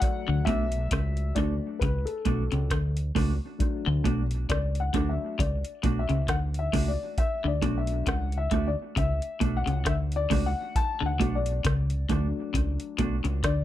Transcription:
0.00 F#3 A3 D5 F#5, kick, closed hi-hat
0.28 D2 D3
0.45 B1 B2 A3 D4 F#4 E5, kick, closed hi-hat
0.72 closed hi-hat
0.91 C#2 C#3, kick, cross-stick, closed hi-hat
1.17 closed hi-hat
1.35 D2 D3 F#3 A3 D4 F#4 D5, kick, closed hi-hat
1.79 C#2 C#3 B4, kick, closed hi-hat
2.05 A4, closed hi-hat
2.25 B1 B2 A3 D4 F#4, kick, closed hi-hat
2.52 C#2 C#3, closed hi-hat
2.71 D2 D3, kick, cross-stick, closed hi-hat
2.97 closed hi-hat
3.15 C#2 C#3 A3 D4 F#4, kick, open hi-hat
3.59 F#3 A3 D4, kick, closed hi-hat
3.86 D2 D3
4.04 B1 B2 A3 D4 F#4, kick, closed hi-hat
4.31 closed hi-hat
4.49 C#2 C#3 D5, kick, cross-stick, closed hi-hat
4.75 closed hi-hat
4.80 F#5
4.93 D2 D3 F#3 A3 D4 F#4, kick, closed hi-hat
5.09 E5
5.39 C#2 C#3 D5, kick, closed hi-hat
5.64 closed hi-hat
5.83 B1 B2 A3 D4 F#4, kick, closed hi-hat
5.99 E5
6.09 C#2 C#3, closed hi-hat
6.28 D2 D3 F#5, kick, cross-stick, closed hi-hat
6.54 closed hi-hat
6.59 E5
6.73 C#2 C#3 A3 D4 F#4, kick, open hi-hat
6.88 D5
7.18 E5, kick, closed hi-hat
7.44 D2 D3 D5
7.61 B1 B2 F#3 A3 D4 F#4, kick, closed hi-hat
7.78 E5
7.87 closed hi-hat
8.07 C#2 C#3 F#5, kick, cross-stick, closed hi-hat
8.32 closed hi-hat
8.38 E5
8.51 D2 D3 A3 D4 F#4, kick, closed hi-hat
8.67 D5
8.96 C#2 C#3 E5, kick, closed hi-hat
9.22 closed hi-hat
9.40 B1 B2 A3 D4 F#4, kick, closed hi-hat
9.57 F#5
9.66 C#2 C#3, closed hi-hat
9.85 D2 D3 E5, kick, cross-stick, closed hi-hat
10.12 closed hi-hat
10.16 D5
10.30 C#2 C#3 A3 D4 F#4, kick, open hi-hat
10.46 F#5
10.76 A5, kick, closed hi-hat
11.00 D2 D3
11.06 F#5
11.20 B1 B2 A3 D4 F#4, kick, closed hi-hat
11.35 D5
11.46 closed hi-hat
11.65 C#2 C#3, kick, cross-stick, closed hi-hat
11.90 closed hi-hat
12.09 D2 D3 F#3 A3 D4 F#4, kick, closed hi-hat
12.54 C#2 C#3, kick, closed hi-hat
12.80 closed hi-hat
12.98 B1 B2 A3 D4 F#4, kick, closed hi-hat
13.24 C#2 C#3, closed hi-hat
13.44 D2 D3 D5, kick, cross-stick, closed hi-hat

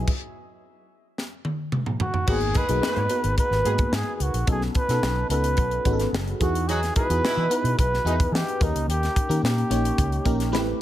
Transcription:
0.08 kick, crash
1.18 snare
1.45 high tom
1.72 mid tom
1.86 mid tom
2.00 F#4, floor tom
2.14 floor tom
2.27 G#1 D#3 F#3 A#3 B3 D#4 F#4 G#4, kick, crash
2.41 closed hi-hat
2.54 D#3 G#3 B3 G#4 B4, kick, closed hi-hat
2.69 B1 A#3 B3 D#4 F#4 G#4, closed hi-hat
2.81 G#3 B3 F#4 B4, snare
2.96 G#2, closed hi-hat
3.09 B3 D#4 F#4 A#4 B4, closed hi-hat
3.24 G#1, closed hi-hat
3.38 B4, kick, closed hi-hat
3.51 G#1, snare
3.64 G#2 D#3 G#3 A#3 B3 D#4 F#4 G#4, closed hi-hat
3.78 kick, closed hi-hat
3.92 G#2 G#4, snare
4.15 G#4
4.20 C#2 F#4, closed hi-hat
4.34 A#1, closed hi-hat
4.47 B1 B3 C#4 D#4 F#4 G#4 A4, kick, closed hi-hat
4.62 snare
4.75 B4, kick, closed hi-hat
4.89 B2 B3 C#4 D#4 F#4 A4, snare, closed hi-hat
5.03 B1, snare
5.29 C#2 B3 C#4 D#4 F#4 A4 B4, closed hi-hat
5.44 closed hi-hat
5.57 B1, kick, closed hi-hat
5.71 closed hi-hat
5.85 G#1 B3 C#4 D#4 F#4 G#4, kick, closed hi-hat
5.93 A4
6.00 snare, closed hi-hat
6.13 F#1, snare
6.28 closed hi-hat
6.40 E2 B3 D#4 E4 F#4 G#4, kick, closed hi-hat
6.55 closed hi-hat
6.68 F#3 D#4 F#4 G#4, closed hi-hat
6.83 snare, closed hi-hat
6.96 E3 G#3 D#4 G#4 B4, kick, closed hi-hat
7.09 E2 B3 D#4 E4 F#4 G#4, closed hi-hat
7.24 B2 E3 G#3 E4, snare
7.37 E3
7.50 B3 D#4 E4 F#4 B4, closed hi-hat
7.64 B2, closed hi-hat
7.78 B1 B4, kick, closed hi-hat
7.94 snare
8.04 E2 B2 D#3 G#3 B3 D#4 E4 F#4 G#4, closed hi-hat
8.20 kick, closed hi-hat
8.32 E3 G4, snare
8.48 closed hi-hat
8.60 D#2 A#3 C#4 D#4 G4 A#4, kick, closed hi-hat
8.74 C#2, closed hi-hat
8.88 D#2 G4, closed hi-hat
9.03 snare, closed hi-hat
9.16 kick, closed hi-hat
9.29 D#3 A#3 C#4 D#4 G4 A#4, closed hi-hat
9.43 A#2 G4, snare
9.58 closed hi-hat
9.70 A#1 A#3 C#4 D#4 G4 C#5, closed hi-hat
9.85 closed hi-hat
9.98 C#2, kick, closed hi-hat
10.12 closed hi-hat
10.25 A#1 A#3 C#4 D#4 G4 A#4, kick, closed hi-hat
10.40 snare, closed hi-hat
10.52 A1 A3 C4 E4 G4 B4, snare

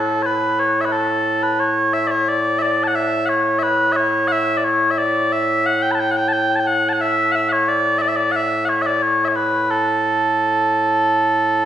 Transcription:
Already playing: A2 A4
0.22 B4 C#5
0.59 C#5
0.81 E5
0.85 B4
0.92 A4
1.43 B4
1.60 C#5
1.93 E5
2.07 C#5 D5
2.29 D5
2.59 D5 E5
2.84 F#5 A5
2.95 E5
3.26 C#5 F#5
3.59 E5
3.63 B4
3.92 E5
3.96 C#5
4.28 F#5
4.32 E5
4.57 D5
4.65 C#5
4.91 E5
4.98 D5
5.32 E5
5.66 F#5
5.82 G5
5.91 A5 B5
6.00 G5
6.11 F#5
6.16 G5
6.28 A5
6.33 G5
6.56 A5
6.60 G5
6.67 F#5
6.89 A5
6.93 F#5
7.01 E5
7.32 E5 F#5
7.49 C#5 F#5
7.69 D5
7.98 D5 E5
8.08 E5
8.16 D5
8.32 F#5
8.36 E5
8.65 C#5 F#5
8.82 E5
8.86 D5
9.02 C#5
9.25 C#5 E5
9.36 B4
9.71 A4

